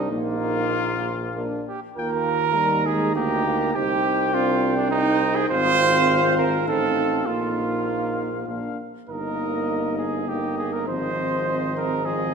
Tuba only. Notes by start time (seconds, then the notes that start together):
Already playing: C2
0.11 A#1
1.97 D#2
3.16 D2
3.75 C2
5.50 G#1
6.67 A1
7.27 A#1
8.48 A#1
9.08 G1
10.86 G#1